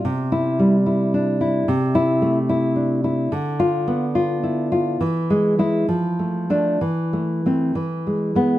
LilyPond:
\new Staff \with { instrumentName = "Nylon-string guitar" } { \time 2/4 \key c \major \tempo 4 = 70 << { \tuplet 3/2 { r8 e'4 } r4 | \key a \minor \tuplet 3/2 { r8 e'4 } r4 | \tuplet 3/2 { r8 f'4 } r4 | \tuplet 3/2 { r4 e'8 r4 d'8 } |
\tuplet 3/2 { r4 c'8 r4 b8 } | } \\ { \tuplet 3/2 { c4 g8 e'8 d'8 e'8 } | \tuplet 3/2 { c4 a8 e'8 d'8 e'8 } | \tuplet 3/2 { d4 b8 f'8 e'8 f'8 } | \tuplet 3/2 { e8 gis8 gis8 f8 a8 a8 } |
\tuplet 3/2 { e8 a8 a8 e8 gis8 gis8 } | } >> }